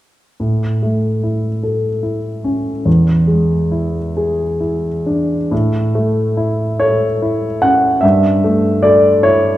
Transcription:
0.40 2.82 A2 soft
0.83 1.48 A3 soft
1.23 1.88 E4 soft
1.63 2.28 A4 soft
2.03 2.69 E4 soft
2.44 2.86 C#4 soft
2.85 5.47 E2 soft
3.27 3.96 G#3 soft
3.72 4.41 E4 soft
4.17 4.88 G#4 soft
4.60 5.34 E4 soft
5.06 5.52 D4 soft
5.51 7.99 A2 soft
5.95 6.63 A3 soft
6.37 7.04 E4 soft
6.80 7.46 A4 soft
6.80 7.62 C#5 soft
7.22 7.87 E4 soft
7.62 8.03 C#4 soft
7.62 8.03 F#5 medium
8.01 9.57 G2 soft
8.01 8.83 E5 soft
8.44 9.08 A3 soft
8.83 9.49 A4 soft
8.83 9.24 D5 medium
9.23 9.57 E4 soft
9.23 9.57 C#5 medium

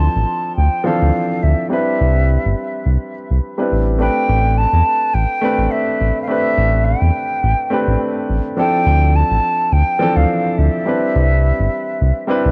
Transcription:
0.00 0.82 F3 medium
0.00 0.83 C4 medium
0.00 0.83 D4 medium
0.00 0.83 E4 medium
0.00 0.84 A4 medium
0.00 0.56 A5 loud
0.16 0.25 A1 medium
0.57 0.69 D2 medium
0.57 0.87 G5 medium
0.84 1.69 E3 medium
0.84 1.68 F3 medium
0.84 1.68 C4 medium
0.84 1.68 D4 medium
0.84 1.69 A4 medium
0.84 1.44 F5 medium
1.02 1.11 D2 medium
1.43 1.55 D2 medium
1.43 1.71 E5 medium
1.69 3.10 G3 medium
1.69 3.11 C4 medium
1.69 3.11 D4 medium
1.69 3.12 E4 medium
1.69 3.12 B4 medium
1.69 2.82 E5 medium
2.01 2.38 C2 medium
2.45 2.54 G1 medium
2.86 2.97 C2 medium
3.31 3.40 C2 medium
3.58 3.97 G3 medium
3.58 3.97 C4 medium
3.58 3.97 D4 medium
3.58 3.97 E4 medium
3.58 3.98 B4 medium
3.72 4.09 A1 medium
3.99 5.39 A3 medium
3.99 5.40 C4 medium
3.99 5.40 D4 medium
3.99 5.41 G4 medium
3.99 5.41 B4 medium
3.99 4.59 G5 loud
4.28 4.66 A1 loud
4.58 5.16 A5 loud
4.73 4.82 E2 medium
5.14 5.26 A1 medium
5.14 5.73 G5 loud
5.41 6.25 A3 medium
5.41 6.26 C4 medium
5.41 6.26 D4 medium
5.41 6.26 G4 medium
5.41 6.27 B4 loud
5.58 5.68 A1 medium
5.71 6.22 E5 medium
6.01 6.12 A1 medium
6.22 6.30 F5 medium
6.28 7.68 A3 medium
6.28 7.69 C4 medium
6.28 7.69 D4 medium
6.28 7.69 G4 medium
6.28 7.70 B4 medium
6.28 6.87 E5 loud
6.58 6.95 A1 medium
6.85 8.00 G5 medium
7.02 7.11 E2 medium
7.43 7.55 A1 medium
7.70 8.54 A3 medium
7.70 8.54 C4 medium
7.70 8.55 D4 medium
7.70 8.55 G4 medium
7.70 8.55 B4 medium
7.87 7.97 A1 medium
8.30 8.41 A1 medium
8.56 9.97 F3 medium
8.56 9.97 C4 medium
8.56 9.98 D4 medium
8.56 9.98 E4 medium
8.56 9.98 A4 medium
8.56 9.17 G5 loud
8.86 9.23 D2 loud
9.16 9.74 A5 loud
9.31 9.40 A1 medium
9.72 9.83 D2 medium
9.72 10.18 G5 loud
9.99 10.84 E3 medium
9.99 10.82 F3 medium
9.99 10.83 C4 medium
9.99 10.83 D4 medium
9.99 10.84 A4 loud
10.16 10.25 D2 medium
10.16 10.59 F5 medium
10.58 10.69 D2 medium
10.58 12.52 E5 medium
10.85 12.26 G3 medium
10.85 12.26 C4 medium
10.85 12.26 D4 medium
10.85 12.27 E4 medium
10.85 12.27 B4 medium
11.15 11.52 C2 medium
11.59 11.68 G1 medium
12.01 12.12 C2 medium
12.27 12.52 G3 medium
12.27 12.52 C4 medium
12.27 12.52 D4 medium
12.27 12.52 E4 medium
12.27 12.52 B4 loud
12.45 12.52 C2 medium

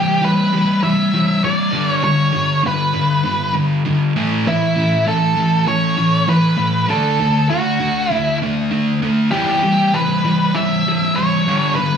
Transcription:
0.00 0.19 E3 medium
0.00 0.19 G3 medium
0.00 0.24 G4 medium
0.22 0.49 E3 medium
0.22 0.49 G3 medium
0.22 0.80 B4 medium
0.53 0.80 E3 medium
0.53 0.80 G3 medium
0.83 1.10 E3 medium
0.83 1.10 G3 medium
0.83 1.44 E5 medium
1.14 1.40 E3 medium
1.14 1.41 G3 medium
1.44 1.71 E3 medium
1.44 1.71 G3 medium
1.44 1.88 D5 medium
1.72 2.01 G2 medium
1.72 2.02 D3 medium
1.72 2.02 G3 medium
1.88 2.04 C#5 medium
2.04 2.31 G2 medium
2.04 2.31 D3 medium
2.04 2.61 C#5 medium
2.33 2.61 G2 medium
2.33 2.61 D3 medium
2.63 2.91 G2 medium
2.63 2.91 D3 medium
2.63 3.53 B4 medium
2.93 3.21 G2 medium
2.93 3.21 D3 medium
3.24 3.52 G2 medium
3.24 3.52 D3 medium
3.54 3.82 G2 medium
3.54 3.82 D3 medium
3.86 4.13 G2 medium
3.86 4.13 D3 medium
4.16 4.44 A2 medium
4.16 4.45 E3 medium
4.16 4.45 A3 medium
4.46 4.73 A2 medium
4.46 4.74 E3 medium
4.46 5.04 E4 medium
4.76 5.04 A2 medium
4.76 5.04 E3 medium
5.06 5.34 A2 medium
5.06 5.34 E3 medium
5.06 5.64 A4 medium
5.36 5.64 A2 medium
5.36 5.64 E3 medium
5.67 5.95 A2 medium
5.67 5.95 E3 medium
5.67 6.30 C#5 loud
5.97 6.25 A2 medium
5.97 6.25 E3 medium
6.28 6.56 A2 medium
6.28 6.56 E3 medium
6.28 6.86 B4 medium
6.57 6.85 A2 medium
6.57 6.86 E3 medium
6.88 7.17 D3 medium
6.88 7.18 A3 medium
6.88 7.18 D4 medium
6.88 7.47 A4 medium
7.20 7.47 D3 medium
7.20 7.47 A3 medium
7.50 7.78 D3 medium
7.50 7.78 A3 medium
7.50 8.12 F#4 medium
7.80 8.08 D3 medium
7.80 8.08 A3 medium
8.11 8.39 D3 medium
8.11 8.39 A3 medium
8.11 8.37 E4 medium
8.42 8.69 D3 medium
8.42 8.69 A3 medium
8.71 8.99 D3 medium
8.71 8.99 A3 medium
9.02 9.30 D3 medium
9.02 9.30 A3 medium
9.31 9.61 E3 medium
9.31 9.61 G3 medium
9.31 9.62 B3 medium
9.31 9.95 G4 medium
9.64 9.91 E3 medium
9.64 9.91 G3 medium
9.94 10.21 E3 medium
9.94 10.21 G3 medium
9.94 10.56 B4 medium
10.25 10.52 E3 medium
10.25 10.52 G3 medium
10.55 10.82 E3 medium
10.55 10.82 G3 medium
10.55 11.17 E5 medium
10.87 11.14 E3 medium
10.87 11.14 G3 medium
11.16 11.44 E3 medium
11.16 11.44 G3 medium
11.16 11.75 C#5 medium
11.47 11.75 G2 medium
11.47 11.76 D3 medium
11.47 11.76 G3 medium
11.75 11.97 G2 medium
11.75 11.97 D3 medium
11.75 11.97 B4 medium

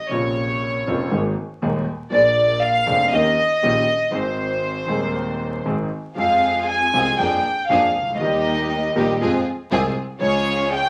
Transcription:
0.09 0.83 A#1 medium
0.09 0.83 A#2 medium
0.09 0.83 C3 soft
0.09 0.82 C#3 medium
0.09 0.83 A#3 medium
0.09 0.84 F4 medium
0.09 1.11 C#5 medium
0.87 1.08 F1 medium
0.87 1.08 F2 medium
0.87 1.08 C#3 medium
0.87 1.08 A#3 medium
0.87 1.08 C4 medium
0.87 1.08 F4 medium
1.11 1.33 G#1 medium
1.11 1.33 G#2 medium
1.11 1.33 D#3 medium
1.11 1.33 G#3 medium
1.11 1.33 A#3 medium
1.11 1.33 G#4 medium
1.62 1.84 D#1 medium
1.62 1.83 D#2 medium
1.62 1.83 D#3 medium
1.62 1.84 G#3 medium
1.62 1.83 A#3 medium
1.62 1.84 G#4 medium
2.10 2.84 A#1 medium
2.10 2.84 A#1 loud
2.10 2.84 A#2 medium
2.10 2.83 F3 medium
2.10 2.83 A#3 medium
2.10 2.84 D4 medium
2.10 2.84 G#4 medium
2.10 2.59 D5 loud
2.62 3.13 F5 loud
2.86 3.08 F1 medium
2.86 3.09 F1 medium
2.86 3.08 F2 medium
2.86 3.08 F3 medium
2.86 3.08 A#3 medium
2.86 3.08 D4 medium
2.86 3.08 G#4 medium
3.12 3.34 D#2 medium
3.12 3.34 D#2 loud
3.12 3.34 D#3 medium
3.12 3.34 A#3 medium
3.12 3.34 C#4 medium
3.12 3.34 G4 medium
3.12 4.14 D#5 loud
3.63 3.84 A#1 medium
3.63 3.85 A#2 medium
3.63 3.84 D#3 medium
3.63 3.84 A#3 medium
3.63 3.84 C#4 medium
3.63 3.84 G4 medium
4.11 4.85 G#1 medium
4.11 4.85 G#2 medium
4.11 4.84 D#3 medium
4.11 4.85 G#3 soft
4.11 4.86 C4 medium
4.11 5.66 C5 medium
4.15 4.86 G#4 medium
4.86 5.62 D#1 medium
4.86 5.62 D#2 medium
4.86 5.61 D#3 medium
4.86 5.61 G#3 medium
4.86 5.62 C4 medium
4.90 5.63 G#4 medium
5.65 5.87 G#1 medium
5.65 5.88 G#1 medium
5.65 5.88 G#2 medium
5.65 5.87 D#3 medium
5.65 5.87 G#3 medium
5.65 5.87 C4 medium
5.65 5.88 G#4 medium
6.17 6.90 F2 medium
6.17 6.90 F3 medium
6.17 6.90 G#3 medium
6.17 6.90 C4 medium
6.17 6.90 F4 medium
6.17 6.90 G#4 medium
6.17 6.91 G#4 medium
6.17 6.65 F5 medium
6.69 7.19 G#5 medium
6.93 7.15 C2 medium
6.93 7.15 C3 medium
6.93 7.15 F3 medium
6.93 7.15 G#3 medium
6.93 7.15 C4 medium
6.93 7.15 F4 medium
6.93 7.15 G#4 medium
7.19 7.40 F2 medium
7.19 7.41 F3 medium
7.19 7.40 A#3 medium
7.19 7.40 A#3 soft
7.19 7.40 D4 medium
7.19 7.41 D4 medium
7.19 7.40 G#4 medium
7.19 7.41 G#4 medium
7.19 7.70 G5 medium
7.68 7.91 F2 medium
7.68 7.91 F3 medium
7.68 7.91 A#3 medium
7.68 7.91 D4 medium
7.68 7.91 G#4 medium
7.68 8.16 F5 medium
7.95 8.20 C#2 medium
8.02 8.08 C2 soft
8.08 8.14 C#2 medium
8.15 8.21 D2 medium
8.19 8.92 D#2 medium
8.19 8.92 D#3 medium
8.19 8.92 G3 medium
8.19 8.92 A#3 medium
8.19 8.93 A#3 medium
8.19 8.92 D#4 medium
8.19 8.92 G4 medium
8.19 9.20 D#5 medium
8.24 8.93 G4 medium
8.95 9.16 A#1 medium
8.95 9.17 A#1 medium
8.95 9.17 A#2 medium
8.95 9.16 D#3 medium
8.95 9.17 G3 medium
8.95 9.16 A#3 medium
8.95 9.17 A#3 medium
8.95 9.17 D#4 medium
8.95 9.17 G4 medium
9.20 9.42 F2 medium
9.20 9.42 F3 medium
9.20 9.42 G#3 medium
9.20 9.42 C4 medium
9.20 9.42 F4 medium
9.20 9.42 G#4 medium
9.71 9.92 C2 loud
9.71 9.93 C2 medium
9.71 9.93 C3 medium
9.71 9.92 F3 medium
9.71 9.93 G#3 medium
9.71 9.92 C4 medium
9.71 9.93 C4 medium
9.71 9.92 F4 medium
9.71 9.92 G#4 loud
9.71 9.93 G#4 medium
10.19 10.89 C#2 medium
10.19 10.89 C#3 medium
10.19 10.89 F3 medium
10.19 10.89 G#3 medium
10.19 10.89 C#4 medium
10.19 10.89 F4 medium
10.19 10.89 G#4 medium
10.19 10.68 C#5 loud
10.73 10.89 G5 loud

